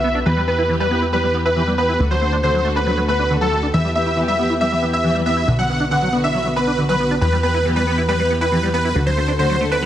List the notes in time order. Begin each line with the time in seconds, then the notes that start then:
Already playing: B1 E5
0.04 D3 B3 F#4 B4
0.15 D4
0.26 E2 E3 B3 G4 B4
0.37 E3 G3 B3 G4 B4
0.48 E3 B3 G4 B4
0.58 E4
0.69 E3 B3 G4 B4
0.80 G3 B4
0.91 E3 B3 G4 B4
1.02 E4
1.13 E3 G3 B3 G4 B4
1.24 E3 G3 B3 G4 B4
1.35 B3
1.45 E4 B4
1.56 E3 B3 G4 B4
1.67 E3 G3 B3 G4 B4
1.78 E3 B3 G4 B4
1.89 E4
2.00 D2 D3 A3 F#4 A4
2.11 D3 F#3 A3 F#4 A4 C5
2.21 D3 A3 F#4 A4
2.32 D4
2.43 D3 A3 F#4 A4 C5
2.54 F#3
2.65 D3 A3 F#4 A4
2.76 D4 B4
2.87 D3 F#3 A3 F#4 A4
2.97 D3 F#3 A3 F#4 A4
3.08 A3 B4
3.19 D4
3.30 D3 A3 F#4 A4
3.41 D3 F#3 A3 F#4 A4
3.52 D3 A3 F#4 A4
3.63 D4
3.74 E2 E3 B3 G4 B4 E5
3.85 E3 G3 B3 G4 B4
3.95 E3 B3 G4 B4 E5
4.06 E4
4.17 E3 B3 G4 B4
4.28 G3 E5
4.39 E3 B3 G4 B4
4.50 E4
4.61 E3 G3 B3 G4 B4 E5
4.72 E3 G3 B3 G4 B4
4.82 B3
4.93 E4 E5
5.04 E3 B3 G4 B4
5.15 E3 G3 B3 G4 B4
5.26 E3 B3 G4 B4 E5
5.37 E4
5.48 B1 D3 B3 F#4 B4
5.58 D3 F#3 B3 F#4 B4 F#5
5.69 D3 B3 F#4 B4
5.80 D4
5.91 D3 B3 F#4 B4 F#5
6.02 F#3
6.13 D3 B3 F#4 B4
6.24 D4 E5
6.34 D3 F#3 B3 F#4 B4
6.45 D3 F#3 B3 F#4 B4
6.56 B3 B4
6.67 D4
6.78 D3 B3 F#4 B4
6.89 D3 F#3 B3 F#4 B4
7.00 D3 B3 F#4 B4
7.11 D4
7.21 E2 E3 B3 G4 B4
7.33 E3 G3 B3 G4 B4
7.43 E3 B3 G4 B4
7.54 E4
7.65 E3 B3 G4 B4
7.76 G3 B4
7.87 E3 B3 G4 B4
7.98 E4
8.09 E3 G3 B3 G4 B4
8.19 E3 G3 B3 G4 B4
8.30 B3
8.41 E4 B4
8.52 E3 B3 G4 B4
8.63 E3 G3 B3 G4 B4
8.74 E3 B3 G4 B4
8.85 E4
8.95 D2 D3 A3 F#4 A4
9.06 D3 F#3 A3 F#4 A4 C5
9.17 D3 A3 F#4 A4
9.28 D4
9.39 D3 A3 F#4 A4 C5
9.50 F#3
9.61 D3 A3 F#4 A4
9.71 D4 B4
9.82 D3 F#3 A3 F#4 A4